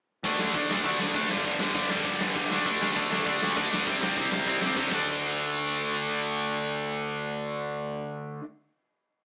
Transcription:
0.23 D2 D3 A3 D4, kick, crash
0.38 D2 D3 A3 D4, snare
0.54 D2 D3 A3 D4, kick, crash
0.69 D2 D3 A3 D4, snare
0.77 kick
0.84 D2 D3 A3 D4, kick, crash
0.98 D2 D3 A3 D4, snare
1.14 D2 D3 A3 D4, kick, crash
1.28 G1 G2 D3 G3, snare
1.37 kick
1.44 G1 G2 D3 G3, kick, crash
1.59 G1 G2 D3 G3, snare
1.74 G1 G2 D3 G3, kick, crash
1.88 G1 G2 D3 G3, snare
1.97 kick
2.04 G1 G2 D3 G3, kick, crash
2.18 G1 G2 D3 G3, snare
2.35 G1 G2 D3 G3, kick, crash
2.50 D2 D3 A3 D4, snare
2.58 kick
2.65 D2 D3 A3 D4, kick, crash
2.80 D2 D3 A3 D4, snare
2.96 D2 D3 A3 D4, kick, crash
3.10 D2 D3 A3 D4, snare
3.19 kick
3.26 D2 D3 A3 D4, kick, crash
3.41 D2 D3 A3 D4, snare
3.56 D2 D3 A3 D4, kick, crash
3.72 D2 D3 A3 D4, snare
3.79 kick
3.87 C2 C3 G3 C4, kick, crash
4.01 C2 C3 G3 C4, snare
4.17 C2 C3 G3 C4, kick, crash
4.31 C2 C3 G3 C4, snare
4.39 kick
4.46 C2 C3 G3 C4, kick, crash
4.60 C2 C3 G3 C4, snare
4.76 C2 C3 G3 C4, kick, snare
4.91 D2 D3 A3, kick, crash
4.95 D4

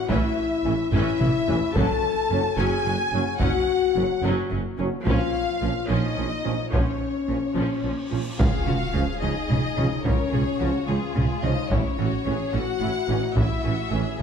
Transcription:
0.09 A1 A2 E3 C#4 E4 E5, taiko
0.63 A1 A2 E3 C#4
0.92 A1 A2 E3 C#4 E4 E5, taiko low-mid
1.19 A1 A2 E3 C#4, taiko mid
1.47 A1 A2 E3 C#4, taiko low
1.73 F#1 F#2 F#3 C#4 A4 A5, taiko
2.30 F#1 F#2 F#3 C#4
2.57 F#1 F#2 F#3 C#4 G#4 G#5
2.86 F#1 F#2 F#3 C#4
3.13 F#1 F#2 F#3 C#4
3.40 F#1 F#2 F#3 C#4 F#4 F#5, taiko
3.96 F#1 F#2 F#3 C#4
4.23 F#1 F#2 F#3 C#4
4.51 F#1 F#2 F#3 C#4
4.78 F#1 F#2 F#3 C#4
5.05 A#1 A#2 F3 C#4 F4 F5, taiko
5.62 A#1 A#2 F3 C#4
5.89 A#1 A#2 F3 C#4 D#4 D#5
6.17 A#1 A#2 F3 C#4
6.44 A#1 A#2 F3 C#4
6.72 A#1 A#2 F3 C#4 C#5, taiko, cymbal swell
7.28 A#1 A#2 F3 C#4
7.56 A#1 A#2 F3 C#4
7.83 A#1 A#2 F3 C#4
8.11 A#1 A#2 F3 C#4
8.39 C#2 C#3 F3 C#4 F4 G#4 F5, taiko, impact
8.64 C#2 C#3 F3 C#4 F#4, taiko mid
8.94 C#2 C#3 F3 C#4 G#4
9.21 C#2 C#3 F3 C#4 D#4 D#5
9.49 C#2 C#3 F3 C#4, taiko mid
9.77 C#2 C#3 F3 C#4, taiko mid
10.03 C#2 C#3 F3 C#4 A#4 C#5, taiko
10.31 C#2 C#3 F3 C#4 G#4, taiko mid
10.59 C#2 C#3 F3 C#4 F#4
10.86 C#2 C#3 F3 G#3 C#4 F4 G#4
11.15 C#2 C#3 F3 C#4, taiko mid
11.43 C#2 C#3 F3 C#4 D#4 D#5, taiko mid
11.70 A1 A2 E3 C#4 E4 C#5, taiko
11.98 A1 A2 E3 C#4 F#4
12.26 A1 A2 E3 C#4 G#4
12.53 A1 A2 E3 C#4 F#4 F#5
12.81 A1 A2 E3 C#4 E4
13.08 A1 A2 E3 C#4 D#4
13.36 A1 A2 E3 C#4 E4 E5, taiko
13.63 A1 A2 E3 C#4 F#4
13.91 A1 A2 E3 C#4 G#4
14.19 A2 E3

